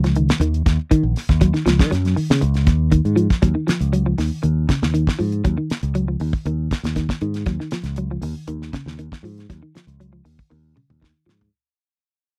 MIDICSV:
0, 0, Header, 1, 6, 480
1, 0, Start_track
1, 0, Key_signature, -6, "minor"
1, 0, Tempo, 505476
1, 1344, Time_signature, 4, 2, 24, 8
1, 11757, End_track
2, 0, Start_track
2, 0, Title_t, "Clean electric guitar"
2, 0, Program_c, 0, 27
2, 40, Note_on_c, 0, 53, 75
2, 142, Note_off_c, 0, 53, 0
2, 157, Note_on_c, 0, 51, 81
2, 367, Note_off_c, 0, 51, 0
2, 390, Note_on_c, 0, 51, 90
2, 602, Note_off_c, 0, 51, 0
2, 863, Note_on_c, 0, 51, 85
2, 1077, Note_off_c, 0, 51, 0
2, 1340, Note_on_c, 0, 54, 93
2, 1450, Note_off_c, 0, 54, 0
2, 1460, Note_on_c, 0, 51, 65
2, 1567, Note_off_c, 0, 51, 0
2, 1573, Note_on_c, 0, 53, 81
2, 1790, Note_off_c, 0, 53, 0
2, 1815, Note_on_c, 0, 54, 91
2, 1926, Note_off_c, 0, 54, 0
2, 2055, Note_on_c, 0, 51, 73
2, 2270, Note_off_c, 0, 51, 0
2, 2768, Note_on_c, 0, 51, 77
2, 2985, Note_off_c, 0, 51, 0
2, 3002, Note_on_c, 0, 53, 77
2, 3221, Note_off_c, 0, 53, 0
2, 3249, Note_on_c, 0, 54, 86
2, 3360, Note_off_c, 0, 54, 0
2, 3370, Note_on_c, 0, 51, 66
2, 3477, Note_off_c, 0, 51, 0
2, 3486, Note_on_c, 0, 53, 72
2, 3703, Note_off_c, 0, 53, 0
2, 3730, Note_on_c, 0, 54, 92
2, 3840, Note_off_c, 0, 54, 0
2, 3858, Note_on_c, 0, 53, 73
2, 3961, Note_off_c, 0, 53, 0
2, 3973, Note_on_c, 0, 51, 78
2, 4187, Note_off_c, 0, 51, 0
2, 4205, Note_on_c, 0, 51, 78
2, 4422, Note_off_c, 0, 51, 0
2, 4451, Note_on_c, 0, 49, 75
2, 4665, Note_off_c, 0, 49, 0
2, 4689, Note_on_c, 0, 51, 78
2, 4904, Note_off_c, 0, 51, 0
2, 4925, Note_on_c, 0, 53, 71
2, 5142, Note_off_c, 0, 53, 0
2, 5170, Note_on_c, 0, 54, 82
2, 5280, Note_off_c, 0, 54, 0
2, 5294, Note_on_c, 0, 51, 65
2, 5399, Note_off_c, 0, 51, 0
2, 5651, Note_on_c, 0, 54, 91
2, 5760, Note_off_c, 0, 54, 0
2, 5776, Note_on_c, 0, 53, 72
2, 5880, Note_off_c, 0, 53, 0
2, 5899, Note_on_c, 0, 51, 68
2, 6110, Note_off_c, 0, 51, 0
2, 6140, Note_on_c, 0, 51, 87
2, 6351, Note_off_c, 0, 51, 0
2, 6611, Note_on_c, 0, 51, 83
2, 6826, Note_off_c, 0, 51, 0
2, 6854, Note_on_c, 0, 51, 77
2, 7068, Note_off_c, 0, 51, 0
2, 7090, Note_on_c, 0, 54, 94
2, 7201, Note_off_c, 0, 54, 0
2, 7218, Note_on_c, 0, 51, 65
2, 7322, Note_off_c, 0, 51, 0
2, 7335, Note_on_c, 0, 53, 74
2, 7549, Note_off_c, 0, 53, 0
2, 7578, Note_on_c, 0, 54, 82
2, 7686, Note_off_c, 0, 54, 0
2, 7704, Note_on_c, 0, 53, 73
2, 7806, Note_off_c, 0, 53, 0
2, 7819, Note_on_c, 0, 51, 68
2, 8032, Note_off_c, 0, 51, 0
2, 8051, Note_on_c, 0, 51, 82
2, 8268, Note_off_c, 0, 51, 0
2, 8292, Note_on_c, 0, 49, 80
2, 8509, Note_off_c, 0, 49, 0
2, 8536, Note_on_c, 0, 51, 88
2, 8751, Note_off_c, 0, 51, 0
2, 8776, Note_on_c, 0, 53, 73
2, 8992, Note_off_c, 0, 53, 0
2, 9019, Note_on_c, 0, 54, 82
2, 9128, Note_off_c, 0, 54, 0
2, 9140, Note_on_c, 0, 51, 67
2, 9246, Note_off_c, 0, 51, 0
2, 9260, Note_on_c, 0, 53, 72
2, 9474, Note_off_c, 0, 53, 0
2, 9499, Note_on_c, 0, 54, 87
2, 9609, Note_off_c, 0, 54, 0
2, 9617, Note_on_c, 0, 53, 76
2, 9725, Note_off_c, 0, 53, 0
2, 9734, Note_on_c, 0, 51, 66
2, 9952, Note_off_c, 0, 51, 0
2, 9974, Note_on_c, 0, 51, 77
2, 10192, Note_off_c, 0, 51, 0
2, 10216, Note_on_c, 0, 49, 73
2, 10434, Note_off_c, 0, 49, 0
2, 10460, Note_on_c, 0, 51, 75
2, 10676, Note_off_c, 0, 51, 0
2, 10695, Note_on_c, 0, 53, 76
2, 10914, Note_off_c, 0, 53, 0
2, 11757, End_track
3, 0, Start_track
3, 0, Title_t, "Fingered electric bass"
3, 0, Program_c, 1, 33
3, 0, Note_on_c, 1, 37, 97
3, 287, Note_off_c, 1, 37, 0
3, 377, Note_on_c, 1, 39, 109
3, 587, Note_off_c, 1, 39, 0
3, 624, Note_on_c, 1, 39, 91
3, 730, Note_off_c, 1, 39, 0
3, 868, Note_on_c, 1, 51, 101
3, 972, Note_off_c, 1, 51, 0
3, 980, Note_on_c, 1, 34, 93
3, 1084, Note_off_c, 1, 34, 0
3, 1226, Note_on_c, 1, 39, 94
3, 1430, Note_off_c, 1, 39, 0
3, 1578, Note_on_c, 1, 37, 99
3, 1706, Note_on_c, 1, 51, 83
3, 1720, Note_off_c, 1, 37, 0
3, 1805, Note_off_c, 1, 51, 0
3, 1826, Note_on_c, 1, 42, 100
3, 2028, Note_off_c, 1, 42, 0
3, 2186, Note_on_c, 1, 49, 80
3, 2284, Note_off_c, 1, 49, 0
3, 2303, Note_on_c, 1, 37, 111
3, 2534, Note_off_c, 1, 37, 0
3, 2534, Note_on_c, 1, 39, 79
3, 2844, Note_off_c, 1, 39, 0
3, 2897, Note_on_c, 1, 44, 94
3, 3102, Note_off_c, 1, 44, 0
3, 3253, Note_on_c, 1, 39, 103
3, 3358, Note_off_c, 1, 39, 0
3, 3614, Note_on_c, 1, 37, 83
3, 3921, Note_off_c, 1, 37, 0
3, 3972, Note_on_c, 1, 39, 80
3, 4077, Note_off_c, 1, 39, 0
3, 4214, Note_on_c, 1, 39, 88
3, 4419, Note_off_c, 1, 39, 0
3, 4582, Note_on_c, 1, 39, 86
3, 4784, Note_off_c, 1, 39, 0
3, 4937, Note_on_c, 1, 44, 92
3, 5140, Note_off_c, 1, 44, 0
3, 5174, Note_on_c, 1, 39, 101
3, 5277, Note_off_c, 1, 39, 0
3, 5535, Note_on_c, 1, 37, 91
3, 5841, Note_off_c, 1, 37, 0
3, 5889, Note_on_c, 1, 39, 85
3, 5995, Note_off_c, 1, 39, 0
3, 6129, Note_on_c, 1, 39, 95
3, 6336, Note_off_c, 1, 39, 0
3, 6490, Note_on_c, 1, 39, 88
3, 6698, Note_off_c, 1, 39, 0
3, 6852, Note_on_c, 1, 44, 92
3, 7059, Note_off_c, 1, 44, 0
3, 7084, Note_on_c, 1, 39, 101
3, 7193, Note_off_c, 1, 39, 0
3, 7440, Note_on_c, 1, 37, 87
3, 7754, Note_off_c, 1, 37, 0
3, 7802, Note_on_c, 1, 39, 86
3, 7912, Note_off_c, 1, 39, 0
3, 8051, Note_on_c, 1, 39, 84
3, 8259, Note_off_c, 1, 39, 0
3, 8415, Note_on_c, 1, 39, 93
3, 8623, Note_off_c, 1, 39, 0
3, 8764, Note_on_c, 1, 44, 89
3, 8976, Note_off_c, 1, 44, 0
3, 9017, Note_on_c, 1, 39, 102
3, 9123, Note_off_c, 1, 39, 0
3, 9374, Note_on_c, 1, 37, 89
3, 9685, Note_off_c, 1, 37, 0
3, 9735, Note_on_c, 1, 39, 77
3, 9843, Note_off_c, 1, 39, 0
3, 9988, Note_on_c, 1, 39, 86
3, 10192, Note_off_c, 1, 39, 0
3, 10350, Note_on_c, 1, 39, 82
3, 10555, Note_off_c, 1, 39, 0
3, 10697, Note_on_c, 1, 44, 84
3, 10907, Note_off_c, 1, 44, 0
3, 11757, End_track
4, 0, Start_track
4, 0, Title_t, "Muted clean electric guitar strokes"
4, 2292, Note_on_c, 9, 29, 90
4, 2387, Note_off_c, 9, 29, 0
4, 11757, End_track
5, 0, Start_track
5, 0, Title_t, "Muted fingered electric bass strokes"
5, 2062, Note_on_c, 9, 29, 36
5, 2157, Note_off_c, 9, 29, 0
5, 3499, Note_on_c, 9, 29, 37
5, 3594, Note_off_c, 9, 29, 0
5, 5419, Note_on_c, 9, 29, 37
5, 5514, Note_off_c, 9, 29, 0
5, 7332, Note_on_c, 9, 29, 38
5, 7427, Note_off_c, 9, 29, 0
5, 9262, Note_on_c, 9, 29, 37
5, 9357, Note_off_c, 9, 29, 0
5, 11757, End_track
6, 0, Start_track
6, 0, Title_t, "Drums"
6, 37, Note_on_c, 9, 42, 38
6, 48, Note_on_c, 9, 38, 30
6, 132, Note_off_c, 9, 42, 0
6, 143, Note_off_c, 9, 38, 0
6, 147, Note_on_c, 9, 42, 59
6, 242, Note_off_c, 9, 42, 0
6, 273, Note_on_c, 9, 42, 36
6, 285, Note_on_c, 9, 38, 77
6, 368, Note_off_c, 9, 42, 0
6, 380, Note_off_c, 9, 38, 0
6, 389, Note_on_c, 9, 42, 75
6, 484, Note_off_c, 9, 42, 0
6, 514, Note_on_c, 9, 42, 37
6, 609, Note_off_c, 9, 42, 0
6, 629, Note_on_c, 9, 36, 75
6, 629, Note_on_c, 9, 42, 61
6, 640, Note_on_c, 9, 38, 28
6, 724, Note_off_c, 9, 36, 0
6, 724, Note_off_c, 9, 42, 0
6, 735, Note_off_c, 9, 38, 0
6, 867, Note_on_c, 9, 36, 73
6, 867, Note_on_c, 9, 42, 77
6, 961, Note_off_c, 9, 42, 0
6, 962, Note_off_c, 9, 36, 0
6, 1102, Note_on_c, 9, 46, 62
6, 1114, Note_on_c, 9, 38, 27
6, 1197, Note_off_c, 9, 46, 0
6, 1209, Note_off_c, 9, 38, 0
6, 1222, Note_on_c, 9, 42, 31
6, 1226, Note_on_c, 9, 36, 66
6, 1233, Note_on_c, 9, 38, 27
6, 1317, Note_off_c, 9, 42, 0
6, 1321, Note_off_c, 9, 36, 0
6, 1328, Note_off_c, 9, 38, 0
6, 1337, Note_on_c, 9, 42, 76
6, 1343, Note_on_c, 9, 36, 84
6, 1432, Note_off_c, 9, 42, 0
6, 1438, Note_off_c, 9, 36, 0
6, 1464, Note_on_c, 9, 42, 31
6, 1475, Note_on_c, 9, 38, 30
6, 1559, Note_off_c, 9, 42, 0
6, 1570, Note_off_c, 9, 38, 0
6, 1580, Note_on_c, 9, 42, 55
6, 1592, Note_on_c, 9, 38, 74
6, 1675, Note_off_c, 9, 42, 0
6, 1687, Note_off_c, 9, 38, 0
6, 1702, Note_on_c, 9, 42, 35
6, 1704, Note_on_c, 9, 36, 78
6, 1713, Note_on_c, 9, 38, 70
6, 1797, Note_off_c, 9, 42, 0
6, 1799, Note_off_c, 9, 36, 0
6, 1808, Note_off_c, 9, 38, 0
6, 1826, Note_on_c, 9, 42, 64
6, 1838, Note_on_c, 9, 38, 31
6, 1921, Note_off_c, 9, 42, 0
6, 1933, Note_off_c, 9, 38, 0
6, 1948, Note_on_c, 9, 42, 35
6, 1959, Note_on_c, 9, 38, 30
6, 2042, Note_off_c, 9, 42, 0
6, 2054, Note_off_c, 9, 38, 0
6, 2061, Note_on_c, 9, 46, 75
6, 2156, Note_off_c, 9, 46, 0
6, 2194, Note_on_c, 9, 38, 82
6, 2289, Note_off_c, 9, 38, 0
6, 2298, Note_on_c, 9, 42, 77
6, 2393, Note_off_c, 9, 42, 0
6, 2414, Note_on_c, 9, 42, 33
6, 2425, Note_on_c, 9, 38, 33
6, 2509, Note_off_c, 9, 42, 0
6, 2520, Note_off_c, 9, 38, 0
6, 2531, Note_on_c, 9, 42, 51
6, 2535, Note_on_c, 9, 36, 78
6, 2543, Note_on_c, 9, 38, 28
6, 2626, Note_off_c, 9, 42, 0
6, 2630, Note_off_c, 9, 36, 0
6, 2638, Note_off_c, 9, 38, 0
6, 2769, Note_on_c, 9, 42, 67
6, 2775, Note_on_c, 9, 36, 70
6, 2864, Note_off_c, 9, 42, 0
6, 2870, Note_off_c, 9, 36, 0
6, 2900, Note_on_c, 9, 42, 34
6, 2995, Note_off_c, 9, 42, 0
6, 3014, Note_on_c, 9, 42, 52
6, 3109, Note_off_c, 9, 42, 0
6, 3135, Note_on_c, 9, 42, 36
6, 3137, Note_on_c, 9, 36, 69
6, 3147, Note_on_c, 9, 38, 30
6, 3230, Note_off_c, 9, 42, 0
6, 3232, Note_off_c, 9, 36, 0
6, 3242, Note_off_c, 9, 38, 0
6, 3251, Note_on_c, 9, 42, 66
6, 3254, Note_on_c, 9, 36, 82
6, 3346, Note_off_c, 9, 42, 0
6, 3349, Note_off_c, 9, 36, 0
6, 3494, Note_on_c, 9, 42, 58
6, 3506, Note_on_c, 9, 38, 81
6, 3589, Note_off_c, 9, 42, 0
6, 3601, Note_off_c, 9, 38, 0
6, 3621, Note_on_c, 9, 42, 55
6, 3716, Note_off_c, 9, 42, 0
6, 3736, Note_on_c, 9, 42, 70
6, 3831, Note_off_c, 9, 42, 0
6, 3971, Note_on_c, 9, 46, 70
6, 3982, Note_on_c, 9, 38, 28
6, 4066, Note_off_c, 9, 46, 0
6, 4077, Note_off_c, 9, 38, 0
6, 4210, Note_on_c, 9, 42, 70
6, 4305, Note_off_c, 9, 42, 0
6, 4451, Note_on_c, 9, 42, 52
6, 4452, Note_on_c, 9, 36, 66
6, 4463, Note_on_c, 9, 38, 72
6, 4546, Note_off_c, 9, 42, 0
6, 4547, Note_off_c, 9, 36, 0
6, 4558, Note_off_c, 9, 38, 0
6, 4587, Note_on_c, 9, 38, 70
6, 4682, Note_off_c, 9, 38, 0
6, 4695, Note_on_c, 9, 42, 68
6, 4790, Note_off_c, 9, 42, 0
6, 4817, Note_on_c, 9, 36, 74
6, 4830, Note_on_c, 9, 38, 66
6, 4912, Note_off_c, 9, 36, 0
6, 4925, Note_off_c, 9, 38, 0
6, 4936, Note_on_c, 9, 46, 49
6, 5031, Note_off_c, 9, 46, 0
6, 5055, Note_on_c, 9, 42, 48
6, 5150, Note_off_c, 9, 42, 0
6, 5171, Note_on_c, 9, 42, 68
6, 5173, Note_on_c, 9, 36, 87
6, 5266, Note_off_c, 9, 42, 0
6, 5268, Note_off_c, 9, 36, 0
6, 5414, Note_on_c, 9, 42, 54
6, 5425, Note_on_c, 9, 38, 76
6, 5509, Note_off_c, 9, 42, 0
6, 5520, Note_off_c, 9, 38, 0
6, 5534, Note_on_c, 9, 42, 52
6, 5629, Note_off_c, 9, 42, 0
6, 5650, Note_on_c, 9, 42, 58
6, 5745, Note_off_c, 9, 42, 0
6, 5886, Note_on_c, 9, 46, 59
6, 5980, Note_off_c, 9, 46, 0
6, 6013, Note_on_c, 9, 36, 74
6, 6108, Note_off_c, 9, 36, 0
6, 6132, Note_on_c, 9, 42, 71
6, 6227, Note_off_c, 9, 42, 0
6, 6373, Note_on_c, 9, 36, 71
6, 6375, Note_on_c, 9, 42, 46
6, 6387, Note_on_c, 9, 38, 73
6, 6468, Note_off_c, 9, 36, 0
6, 6470, Note_off_c, 9, 42, 0
6, 6481, Note_off_c, 9, 38, 0
6, 6496, Note_on_c, 9, 42, 51
6, 6508, Note_on_c, 9, 38, 66
6, 6591, Note_off_c, 9, 42, 0
6, 6603, Note_off_c, 9, 38, 0
6, 6607, Note_on_c, 9, 42, 72
6, 6610, Note_on_c, 9, 36, 59
6, 6619, Note_on_c, 9, 38, 30
6, 6702, Note_off_c, 9, 42, 0
6, 6705, Note_off_c, 9, 36, 0
6, 6713, Note_off_c, 9, 38, 0
6, 6733, Note_on_c, 9, 36, 70
6, 6741, Note_on_c, 9, 38, 67
6, 6828, Note_off_c, 9, 36, 0
6, 6836, Note_off_c, 9, 38, 0
6, 6847, Note_on_c, 9, 42, 46
6, 6942, Note_off_c, 9, 42, 0
6, 6971, Note_on_c, 9, 42, 52
6, 6982, Note_on_c, 9, 38, 26
6, 7065, Note_off_c, 9, 42, 0
6, 7077, Note_off_c, 9, 38, 0
6, 7083, Note_on_c, 9, 42, 65
6, 7088, Note_on_c, 9, 36, 88
6, 7094, Note_on_c, 9, 38, 28
6, 7178, Note_off_c, 9, 42, 0
6, 7183, Note_off_c, 9, 36, 0
6, 7189, Note_off_c, 9, 38, 0
6, 7220, Note_on_c, 9, 38, 25
6, 7315, Note_off_c, 9, 38, 0
6, 7320, Note_on_c, 9, 42, 59
6, 7331, Note_on_c, 9, 38, 70
6, 7414, Note_off_c, 9, 42, 0
6, 7426, Note_off_c, 9, 38, 0
6, 7442, Note_on_c, 9, 42, 52
6, 7453, Note_on_c, 9, 38, 28
6, 7537, Note_off_c, 9, 42, 0
6, 7548, Note_off_c, 9, 38, 0
6, 7561, Note_on_c, 9, 42, 66
6, 7656, Note_off_c, 9, 42, 0
6, 7806, Note_on_c, 9, 46, 68
6, 7901, Note_off_c, 9, 46, 0
6, 8048, Note_on_c, 9, 42, 75
6, 8143, Note_off_c, 9, 42, 0
6, 8185, Note_on_c, 9, 38, 30
6, 8280, Note_off_c, 9, 38, 0
6, 8291, Note_on_c, 9, 42, 50
6, 8293, Note_on_c, 9, 36, 70
6, 8303, Note_on_c, 9, 38, 79
6, 8386, Note_off_c, 9, 42, 0
6, 8388, Note_off_c, 9, 36, 0
6, 8398, Note_off_c, 9, 38, 0
6, 8429, Note_on_c, 9, 38, 71
6, 8524, Note_off_c, 9, 38, 0
6, 8534, Note_on_c, 9, 42, 65
6, 8629, Note_off_c, 9, 42, 0
6, 8660, Note_on_c, 9, 36, 72
6, 8669, Note_on_c, 9, 38, 69
6, 8755, Note_off_c, 9, 36, 0
6, 8764, Note_off_c, 9, 38, 0
6, 8783, Note_on_c, 9, 46, 51
6, 8878, Note_off_c, 9, 46, 0
6, 8905, Note_on_c, 9, 42, 49
6, 8916, Note_on_c, 9, 38, 28
6, 9000, Note_off_c, 9, 42, 0
6, 9011, Note_off_c, 9, 38, 0
6, 9019, Note_on_c, 9, 36, 80
6, 9021, Note_on_c, 9, 42, 69
6, 9032, Note_on_c, 9, 38, 26
6, 9114, Note_off_c, 9, 36, 0
6, 9116, Note_off_c, 9, 42, 0
6, 9127, Note_off_c, 9, 38, 0
6, 9262, Note_on_c, 9, 42, 53
6, 9273, Note_on_c, 9, 38, 78
6, 9357, Note_off_c, 9, 42, 0
6, 9368, Note_off_c, 9, 38, 0
6, 9384, Note_on_c, 9, 42, 53
6, 9479, Note_off_c, 9, 42, 0
6, 9503, Note_on_c, 9, 42, 63
6, 9598, Note_off_c, 9, 42, 0
6, 9738, Note_on_c, 9, 46, 67
6, 9833, Note_off_c, 9, 46, 0
6, 9867, Note_on_c, 9, 36, 67
6, 9962, Note_off_c, 9, 36, 0
6, 9984, Note_on_c, 9, 48, 48
6, 10078, Note_off_c, 9, 48, 0
6, 10225, Note_on_c, 9, 47, 64
6, 10320, Note_off_c, 9, 47, 0
6, 10352, Note_on_c, 9, 47, 54
6, 10447, Note_off_c, 9, 47, 0
6, 10468, Note_on_c, 9, 36, 68
6, 10485, Note_on_c, 9, 38, 69
6, 10563, Note_off_c, 9, 36, 0
6, 10579, Note_off_c, 9, 38, 0
6, 10722, Note_on_c, 9, 38, 72
6, 10817, Note_off_c, 9, 38, 0
6, 10837, Note_on_c, 9, 43, 63
6, 10932, Note_off_c, 9, 43, 0
6, 11757, End_track
0, 0, End_of_file